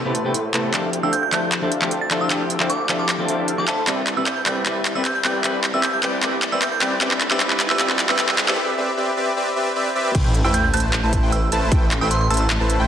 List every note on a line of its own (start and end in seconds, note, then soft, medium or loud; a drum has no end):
0.04 0.26 A1 medium
0.04 0.12 C3 medium
0.04 0.12 A3 medium
0.04 0.23 A3 medium
0.04 0.12 B3 medium
0.04 0.23 E4 medium
0.04 0.13 G4 loud
0.04 0.22 B4 medium
0.04 0.22 C5 medium
0.04 0.23 A5 medium
0.15 closed hi-hat medium
0.24 0.52 A2 medium
0.24 0.31 C3 medium
0.24 0.32 A3 medium
0.24 0.37 A3 medium
0.24 0.32 B3 medium
0.24 0.37 E4 medium
0.24 0.32 G4 medium
0.24 0.37 B4 medium
0.24 0.37 C5 medium
0.24 0.37 G5 loud
0.34 closed hi-hat medium
0.53 0.75 A2 loud
0.53 0.71 C3 medium
0.53 0.71 A3 medium
0.53 0.72 B3 medium
0.53 0.71 E4 loud
0.53 0.72 G4 medium
0.53 0.71 B4 medium
0.53 0.71 C5 medium
0.53 0.71 A5 loud
0.53 clap medium
0.53 closed hi-hat medium
0.73 1.01 D2 loud
0.73 1.00 F3 medium
0.73 1.01 C4 medium
0.73 0.86 D4 medium
0.73 1.01 E4 medium
0.73 1.01 G4 medium
0.73 0.86 A4 medium
0.73 0.86 C5 medium
0.73 0.86 E5 medium
0.73 0.86 F5 medium
0.73 0.86 G5 medium
0.73 clap medium
0.73 closed hi-hat medium
0.93 closed hi-hat medium
1.02 1.31 D2 medium
1.02 1.10 F3 medium
1.02 1.10 C4 medium
1.02 1.16 D4 medium
1.02 1.10 E4 medium
1.02 1.11 G4 medium
1.02 1.16 A4 medium
1.02 1.16 C5 medium
1.02 1.16 E5 medium
1.02 1.16 F5 medium
1.02 1.16 G5 loud
1.02 1.11 E6 medium
1.13 1.19 G6 medium
1.13 closed hi-hat medium
1.23 1.29 G6 medium
1.31 1.60 D2 medium
1.31 1.59 F3 medium
1.31 1.60 C4 medium
1.31 1.45 D4 medium
1.31 1.60 E4 medium
1.31 1.60 G4 medium
1.31 1.45 A4 medium
1.31 1.45 C5 medium
1.31 1.45 E5 medium
1.31 1.45 F5 medium
1.31 1.45 A5 medium
1.31 1.50 G6 medium
1.31 clap medium
1.31 closed hi-hat medium
1.52 clap medium
1.52 closed hi-hat medium
1.61 1.80 D2 medium
1.61 1.69 F3 medium
1.61 1.69 C4 medium
1.61 1.79 D4 medium
1.61 1.69 E4 medium
1.61 1.70 G4 loud
1.61 1.79 A4 medium
1.61 1.79 C5 medium
1.61 1.79 E5 medium
1.61 1.79 F5 medium
1.61 1.79 A5 medium
1.72 closed hi-hat medium
1.81 2.09 D2 medium
1.81 1.88 F3 medium
1.81 1.89 C4 medium
1.81 1.94 D4 medium
1.81 1.89 E4 medium
1.81 1.89 G4 medium
1.81 1.94 A4 medium
1.81 1.94 C5 medium
1.81 1.94 E5 medium
1.81 1.94 F5 medium
1.81 1.94 G5 medium
1.81 clap medium
1.91 closed hi-hat medium
2.01 2.18 A6 medium
2.10 2.29 D2 loud
2.10 2.28 F3 medium
2.10 2.28 C4 medium
2.10 2.28 D4 medium
2.10 2.28 E4 medium
2.10 2.29 G4 medium
2.10 2.28 A4 medium
2.10 2.28 C5 medium
2.10 2.28 E5 medium
2.10 2.28 F5 medium
2.10 2.28 A5 loud
2.10 clap medium
2.10 closed hi-hat medium
2.21 2.38 E6 medium
2.29 2.58 D2 loud
2.29 2.57 F3 medium
2.29 2.58 C4 medium
2.29 2.43 D4 medium
2.29 2.58 E4 medium
2.29 2.58 G4 medium
2.29 2.43 A4 medium
2.29 2.43 C5 medium
2.29 2.43 E5 medium
2.29 2.43 F5 medium
2.29 2.43 G5 medium
2.29 clap medium
2.29 closed hi-hat medium
2.50 closed hi-hat medium
2.59 2.87 D2 medium
2.59 2.67 F3 medium
2.59 2.67 C4 medium
2.59 2.73 D4 loud
2.59 2.67 E4 medium
2.59 2.68 G4 medium
2.59 2.73 A4 medium
2.59 2.73 C5 medium
2.59 2.73 E5 medium
2.59 2.73 F5 medium
2.59 2.73 G5 loud
2.59 clap medium
2.70 2.87 D6 medium
2.70 closed hi-hat medium
2.88 3.17 D2 medium
2.88 3.16 F3 medium
2.88 3.16 C4 medium
2.88 3.02 D4 medium
2.88 3.17 E4 medium
2.88 3.17 G4 medium
2.88 3.02 A4 medium
2.88 3.02 C5 medium
2.88 3.02 E5 medium
2.88 3.02 F5 medium
2.88 3.02 A5 loud
2.88 clap medium
2.88 closed hi-hat medium
2.99 3.06 D6 medium
3.09 3.15 D6 medium
3.09 clap medium
3.09 closed hi-hat medium
3.18 3.37 D2 medium
3.18 3.25 F3 medium
3.18 3.26 C4 medium
3.18 3.36 D4 medium
3.18 3.26 E4 medium
3.18 3.26 G4 loud
3.18 3.36 A4 medium
3.18 3.36 C5 medium
3.18 3.36 E5 medium
3.18 3.36 F5 medium
3.18 3.36 A5 medium
3.28 3.55 F3 medium
3.28 3.56 C4 medium
3.28 3.56 E4 medium
3.28 3.56 G4 medium
3.28 closed hi-hat medium
3.39 3.66 D2 loud
3.39 3.51 D4 medium
3.39 3.51 A4 medium
3.39 3.51 C5 medium
3.39 3.51 E5 medium
3.39 3.51 F5 medium
3.39 3.51 A5 medium
3.48 closed hi-hat medium
3.57 3.65 F3 medium
3.57 3.65 C4 medium
3.57 3.65 E4 medium
3.57 3.66 G4 medium
3.57 3.66 D6 medium
3.68 3.85 D2 loud
3.68 3.81 D4 medium
3.68 3.81 A4 medium
3.68 3.81 C5 medium
3.68 3.81 E5 medium
3.68 3.81 F5 medium
3.68 3.87 A5 medium
3.68 3.81 B5 medium
3.68 clap medium
3.68 closed hi-hat medium
3.86 4.15 C2 loud
3.86 4.14 G3 medium
3.86 4.14 C4 medium
3.86 4.00 C4 medium
3.86 4.15 E4 medium
3.86 4.00 G4 medium
3.86 4.15 B4 medium
3.86 4.00 D5 medium
3.86 4.00 E5 medium
3.86 clap medium
3.86 closed hi-hat medium
3.86 riser medium
4.07 clap medium
4.07 closed hi-hat medium
4.16 4.44 C2 loud
4.16 4.23 G3 medium
4.16 4.24 C4 medium
4.16 4.29 C4 medium
4.16 4.24 E4 medium
4.16 4.29 G4 medium
4.16 4.29 B4 medium
4.16 4.24 B4 medium
4.16 4.29 D5 medium
4.16 4.29 E5 medium
4.16 4.25 E6 medium
4.26 4.33 G6 medium
4.26 clap medium
4.26 closed hi-hat medium
4.37 4.43 G6 medium
4.45 4.64 C2 loud
4.45 4.64 G3 medium
4.45 4.64 C4 medium
4.45 4.59 C4 medium
4.45 4.64 E4 medium
4.45 4.59 G4 medium
4.45 4.59 B4 medium
4.45 4.65 B4 medium
4.45 4.59 D5 medium
4.45 4.59 G5 medium
4.45 4.63 G6 medium
4.45 clap medium
4.45 closed hi-hat medium
4.65 4.93 C2 loud
4.65 4.93 G3 medium
4.65 4.93 C4 medium
4.65 4.79 C4 medium
4.65 4.93 E4 medium
4.65 4.79 G4 medium
4.65 4.79 B4 medium
4.65 4.94 B4 medium
4.65 4.79 D5 medium
4.65 4.79 E5 medium
4.65 clap medium
4.65 closed hi-hat medium
4.85 clap medium
4.85 closed hi-hat medium
4.95 5.23 C2 loud
4.95 5.02 G3 medium
4.95 5.02 C4 medium
4.95 5.08 C4 medium
4.95 5.03 E4 medium
4.95 5.08 G4 medium
4.95 5.08 B4 medium
4.95 5.03 B4 medium
4.95 5.08 D5 medium
4.95 5.08 E5 loud
4.95 5.03 E6 medium
5.05 5.11 G6 medium
5.05 clap medium
5.05 closed hi-hat medium
5.15 5.21 G6 medium
5.24 5.42 C2 loud
5.24 5.42 G3 medium
5.24 5.43 C4 medium
5.24 5.37 C4 medium
5.24 5.43 E4 medium
5.24 5.37 G4 medium
5.24 5.37 B4 medium
5.24 5.43 B4 medium
5.24 5.37 D5 medium
5.24 5.37 G5 medium
5.24 5.42 G6 medium
5.24 clap medium
5.24 closed hi-hat medium
5.43 5.72 C2 loud
5.43 5.71 G3 medium
5.43 5.71 C4 medium
5.43 5.57 C4 medium
5.43 5.72 E4 medium
5.43 5.57 G4 medium
5.43 5.57 B4 medium
5.43 5.72 B4 medium
5.43 5.57 D5 medium
5.43 5.57 E5 medium
5.43 clap medium
5.43 closed hi-hat medium
5.64 clap medium
5.64 closed hi-hat medium
5.73 6.01 C2 medium
5.73 5.80 G3 medium
5.73 5.81 C4 medium
5.73 5.86 C4 medium
5.73 5.81 E4 medium
5.73 5.86 G4 medium
5.73 5.86 B4 medium
5.73 5.81 B4 medium
5.73 5.86 D5 medium
5.73 5.86 E5 loud
5.73 5.81 E6 medium
5.83 5.90 G6 medium
5.83 clap medium
5.83 closed hi-hat medium
5.93 6.00 G6 medium
6.02 6.21 G3 medium
6.02 6.21 C4 medium
6.02 6.16 C4 medium
6.02 6.21 E4 medium
6.02 6.16 G4 medium
6.02 6.16 B4 medium
6.02 6.22 B4 medium
6.02 6.16 D5 medium
6.02 6.16 G5 medium
6.02 6.20 G6 medium
6.02 clap medium
6.02 closed hi-hat medium
6.22 6.50 C2 loud
6.22 6.49 G3 medium
6.22 6.50 C4 medium
6.22 6.35 C4 medium
6.22 6.50 E4 medium
6.22 6.35 G4 medium
6.22 6.35 B4 medium
6.22 6.50 B4 medium
6.22 6.35 D5 medium
6.22 6.35 E5 medium
6.22 clap medium
6.22 closed hi-hat medium
6.42 clap medium
6.42 closed hi-hat medium
6.51 6.80 C2 medium
6.51 6.59 G3 medium
6.51 6.59 C4 medium
6.51 6.65 C4 medium
6.51 6.59 E4 medium
6.51 6.65 G4 medium
6.51 6.65 B4 medium
6.51 6.60 B4 medium
6.51 6.65 D5 medium
6.51 6.65 E5 loud
6.51 6.60 E6 loud
6.62 6.68 G6 medium
6.62 clap medium
6.62 closed hi-hat medium
6.72 6.78 G6 medium
6.80 7.03 C2 loud
6.80 6.99 G3 medium
6.80 6.99 C4 medium
6.80 6.94 C4 medium
6.80 7.00 E4 medium
6.80 6.94 G4 medium
6.80 6.94 B4 medium
6.80 7.00 B4 medium
6.80 6.94 D5 medium
6.80 6.94 G5 medium
6.80 6.99 G6 medium
6.80 clap loud
6.80 closed hi-hat medium
7.00 7.29 F1 loud
7.00 7.28 G3 medium
7.00 7.28 C4 medium
7.00 7.14 C4 medium
7.00 7.29 E4 medium
7.00 7.14 G4 medium
7.00 7.14 B4 medium
7.00 7.29 B4 medium
7.00 7.14 D5 medium
7.00 7.14 E5 medium
7.00 clap medium
7.00 closed hi-hat medium
7.11 clap medium
7.21 clap medium
7.21 closed hi-hat medium
7.30 7.38 F1 loud
7.30 7.37 G3 medium
7.30 7.37 C4 medium
7.30 7.39 C4 medium
7.30 7.38 E4 medium
7.30 7.39 G4 medium
7.30 7.39 B4 medium
7.30 7.38 B4 medium
7.30 7.39 D5 medium
7.30 7.39 E5 loud
7.30 7.38 E6 medium
7.30 clap medium
7.39 7.67 G3 medium
7.39 7.67 C4 medium
7.39 7.53 C4 medium
7.39 7.68 E4 medium
7.39 7.53 G4 medium
7.39 7.53 B4 medium
7.39 7.68 B4 medium
7.39 7.53 D5 medium
7.39 7.53 E5 medium
7.39 clap medium
7.39 closed hi-hat medium
7.50 clap medium
7.60 clap loud
7.60 closed hi-hat medium
7.69 7.78 F1 medium
7.69 7.76 G3 medium
7.69 7.77 C4 medium
7.69 7.78 C4 loud
7.69 7.77 E4 medium
7.69 7.78 G4 medium
7.69 7.78 B4 medium
7.69 7.77 B4 medium
7.69 7.78 D5 medium
7.69 7.78 E5 loud
7.69 7.78 E6 medium
7.69 clap medium
7.78 8.07 F1 loud
7.78 8.06 G3 medium
7.78 8.07 C4 medium
7.78 7.92 C4 medium
7.78 8.07 E4 medium
7.78 7.92 G4 medium
7.78 7.92 B4 medium
7.78 8.07 B4 medium
7.78 7.92 D5 medium
7.78 7.92 E5 medium
7.78 clap loud
7.78 closed hi-hat medium
7.90 clap medium
7.99 clap loud
7.99 closed hi-hat medium
8.08 8.16 G3 medium
8.08 8.16 C4 medium
8.08 8.17 C4 loud
8.08 8.16 E4 medium
8.08 8.17 G4 medium
8.08 8.17 B4 medium
8.08 8.17 D5 medium
8.08 8.17 E5 loud
8.08 8.17 E6 medium
8.08 clap medium
8.18 8.46 F1 loud
8.18 8.46 G3 medium
8.18 8.46 C4 medium
8.18 8.32 C4 medium
8.18 8.46 E4 medium
8.18 8.32 G4 medium
8.18 8.32 B4 medium
8.18 8.47 B4 medium
8.18 8.32 D5 medium
8.18 8.32 E5 medium
8.18 clap loud
8.18 closed hi-hat medium
8.29 clap medium
8.38 clap loud
8.38 closed hi-hat medium
8.47 8.55 G3 medium
8.47 8.55 C4 medium
8.47 8.56 C4 loud
8.47 8.56 E4 medium
8.47 8.56 G4 medium
8.47 8.56 B4 loud
8.47 8.56 B4 medium
8.47 8.56 D5 loud
8.47 8.56 E5 loud
8.47 8.56 E6 loud
8.47 clap medium
8.58 8.71 C4 medium
8.58 8.71 G4 medium
8.58 8.71 B4 medium
8.58 8.71 D5 medium
8.58 8.71 E5 medium
8.78 8.90 C4 medium
8.78 8.90 G4 medium
8.78 8.90 B4 medium
8.78 8.90 D5 medium
8.78 8.90 E5 medium
8.97 9.10 C4 medium
8.97 9.10 G4 medium
8.97 9.10 B4 medium
8.97 9.10 D5 medium
8.97 9.10 E5 medium
9.17 9.30 C4 medium
9.17 9.30 G4 medium
9.17 9.30 B4 medium
9.17 9.30 D5 medium
9.17 9.30 E5 medium
9.36 9.49 C4 medium
9.36 9.49 G4 medium
9.36 9.49 B4 medium
9.36 9.49 D5 medium
9.36 9.49 E5 medium
9.56 9.69 C4 medium
9.56 9.69 G4 medium
9.56 9.69 B4 medium
9.56 9.69 D5 medium
9.56 9.69 E5 medium
9.76 9.88 C4 medium
9.76 9.88 G4 medium
9.76 9.88 B4 medium
9.76 9.88 D5 medium
9.76 9.88 E5 medium
9.95 10.08 C4 medium
9.95 10.08 G4 medium
9.95 10.08 B4 medium
9.95 10.08 D5 medium
9.95 10.08 E5 medium
10.15 10.42 A1 loud
10.15 10.28 A3 medium
10.15 10.28 E4 medium
10.15 10.28 G5 medium
10.15 kick loud
10.15 closed hi-hat medium
10.15 crash loud
10.15 sub drop medium
10.34 closed hi-hat medium
10.44 10.72 A1 medium
10.44 10.57 A3 loud
10.44 10.57 E4 medium
10.44 10.57 B4 medium
10.44 10.57 C5 medium
10.44 10.57 G5 loud
10.44 10.52 E6 medium
10.54 10.60 G6 medium
10.54 closed hi-hat medium
10.64 10.70 G6 medium
10.74 11.01 A1 medium
10.74 10.86 A3 medium
10.74 10.86 E4 medium
10.74 10.86 B4 medium
10.74 10.86 C5 medium
10.74 10.86 A5 loud
10.74 10.91 G6 medium
10.74 closed hi-hat medium
10.77 closed hi-hat medium
10.80 closed hi-hat medium
10.93 clap loud
10.93 closed hi-hat medium
11.03 11.21 A1 medium
11.03 11.21 A3 medium
11.03 11.21 E4 medium
11.03 11.21 B4 medium
11.03 11.21 C5 medium
11.03 11.21 A5 medium
11.13 kick medium
11.13 closed hi-hat medium
11.23 11.50 A1 loud
11.23 11.35 A3 medium
11.23 11.35 E4 medium
11.23 11.35 B4 medium
11.23 11.35 C5 medium
11.23 11.35 G5 loud
11.32 11.62 E6 medium
11.32 closed hi-hat medium
11.52 11.70 A1 loud
11.52 11.69 A3 loud
11.52 11.69 E4 loud
11.52 11.69 B4 medium
11.52 11.69 C5 medium
11.52 11.69 A5 loud
11.52 closed hi-hat medium
11.72 11.99 A1 loud
11.72 11.85 A3 medium
11.72 11.85 E4 medium
11.72 11.84 C5 medium
11.72 11.84 G5 medium
11.72 kick loud
11.72 closed hi-hat medium
11.91 clap medium
11.91 closed hi-hat medium
12.01 12.29 A1 medium
12.01 12.14 A3 medium
12.01 12.14 E4 medium
12.01 12.14 B4 medium
12.01 12.14 C5 medium
12.01 12.14 G5 loud
12.01 12.09 E6 medium
12.11 12.17 C6 medium
12.11 closed hi-hat medium
12.21 12.27 C6 medium
12.30 12.58 A1 loud
12.30 12.43 A3 medium
12.30 12.43 E4 medium
12.30 12.43 B4 medium
12.30 12.43 C5 medium
12.30 12.43 A5 medium
12.30 12.43 A5 loud
12.30 12.37 E6 medium
12.30 closed hi-hat medium
12.34 closed hi-hat medium
12.37 12.47 E6 medium
12.37 closed hi-hat medium
12.50 clap loud
12.50 closed hi-hat medium
12.60 12.78 A1 loud
12.60 12.77 A3 medium
12.60 12.77 E4 medium
12.60 12.77 B4 medium
12.60 12.77 C5 medium
12.60 12.77 A5 medium
12.70 closed hi-hat medium
12.80 12.87 A1 loud
12.80 12.87 A3 medium
12.80 12.87 E4 medium
12.80 12.87 B4 medium
12.80 12.87 C5 medium
12.80 12.87 G5 loud